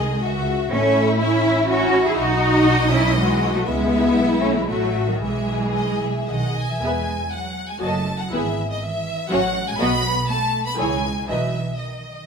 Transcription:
Already playing: C2 D#3 G#3 G#4 D#5
0.23 C#2 F#4 E5
0.71 A1 A3 C#4 E4 E5
1.19 C#4 E4 E5
1.68 C#4 F#4 E5
2.06 E4 G#4
2.17 B1 D#4 F#4 D#5
2.92 C#4 E4
3.18 E3 G#3 F#4
3.54 F#3 A3
3.66 C#2 G#3 B3 E4 E5
4.17 B1
4.42 A3 C#4
4.55 E3 G#3
4.68 A1 F#3 A3 F#4 E5
5.08 D#3 F#3
5.21 B1 E3 G#3 G#4 E5
5.75 D#5
6.02 E5
6.28 B1 D#3 D#5 F#5
6.57 G#5
6.69 E3 E5
6.82 E2 G#3 B3 G#4 B4 E5 G#5
7.32 F#3 F#5
7.70 G#3 G#5
7.81 F#1 F#3 A3 F#4 A4 D#5 A5
8.21 F#3 F#5
8.32 G#1 E3 B3 E4 G#4 B4 E5
8.71 D#3 D#5
8.82 E3 E5
9.30 A1 F#3 C#4 F#4 C#5 F#5
9.68 G#3 G#5
9.80 B1 F#3 B3 F#4 D#5 B5
10.29 A3 A5
10.66 B3 B5
10.78 C#2 E3 G#3 E4 G#4 C#5 G#5
11.29 B1 E3 F#3 D#4 B4 D#5 E5
11.80 D#3 D#5

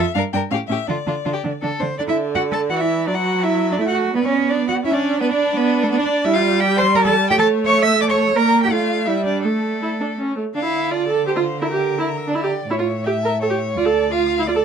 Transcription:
Already playing: E5
0.15 G2 D4 A#4 F5
0.33 G2 D4 A#4 G5
0.51 A2 C#4 G4 F5
0.68 A2 C#4 G4 E5
0.87 D3 D4 F4 D5
1.07 D3 D4 F4
1.25 D3 D4 F4
1.33 G4
1.44 D3 D4
1.62 D3 D4 A4
1.79 D3 D4 C5
1.97 D3 D4 D5
2.08 E4 E5
2.35 F#4 F#5
2.52 A4 A5
2.70 E3 F#4 F#5
2.79 E4 E5
3.07 F#3 D4 B4 D5
3.15 F#4 F#5
3.43 E4 A4 E5
3.71 D4 D5
3.78 A3 E4 E5
3.88 F#4 F#5
4.13 B3 B4 D5
4.25 C#4 C#5
4.49 D4 D5
4.68 F#4 F#5
4.85 C#4 E4 C#5 E5
4.94 D4 D5
5.21 B3 D4 B4
5.31 D4 D5
5.56 B3 B4
5.83 A3 A4
5.91 B3 B4
5.99 D4 D5
6.24 G3 E4 D5 E5
6.34 F4 F5
6.60 G4 G5
6.77 C5 C6
6.95 A#4 A#5
7.04 A4 A5
7.30 A3 G4 C#5 G5
7.38 A4 A5
7.65 C#5 E5 C#6
7.83 E5 E6
8.00 A4 D5 D6
8.09 C#5 C#6
8.36 A#3 A#4 D5 A#5
8.63 G4 G5
8.71 A3 F4 D5 F5
9.06 G3 E4 D5 E5
9.25 D4 D5
9.42 A3 A4 D5
9.82 E4
10.01 D4
10.19 C#4 C#5
10.36 A3
10.55 D3 D4 D5 F5
10.64 E4
10.74 F5
10.91 F4 D5 A5
11.08 A4 D6
11.27 G4 C5 A5
11.36 F4
11.46 F5
11.62 E4 A#4 E5
11.71 G4
11.82 G5
11.99 E4 A#5
12.17 E6
12.27 D4
12.34 E4 D5 A#5
12.44 G4
12.52 G5
12.69 A2 E4 C#5
12.79 F4
12.88 E5
13.05 G4 E5 G5
13.23 A#4 A5
13.40 A4 C#5 G5
13.50 G4
13.59 E5
13.74 D2 F4 F5
13.78 D5
13.86 A4
13.93 A5
14.12 F4 F5 D6
14.29 F6
14.39 E4
14.46 F4 D5 D6
14.56 A4

